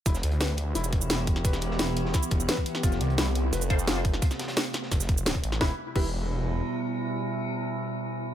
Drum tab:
CC |----------------|----------------|----------------|----------------|
HH |x-xxx-x-xxx-x-x-|x-x-x-x-x-x-x-x-|x-xxx-x-xxx-x-x-|x-xxx-x-x-x-x-x-|
SH |xx--x---xx-xx---|xx--x---xx-xx---|xx--x---xx-xx---|xx--x---xx-xx---|
SD |-o--o-------o--o|-o-oo--oo---o--o|-o--o-------o--o|-oooo-oooo--o--o|
BD |o---------o---o-|o-------o-o--o--|o---------o---o-|o-------o-o--o--|

CC |----x-----------|----------------|
HH |----------------|----------------|
SH |----------------|----------------|
SD |o---------------|----------------|
BD |o---o-----------|----------------|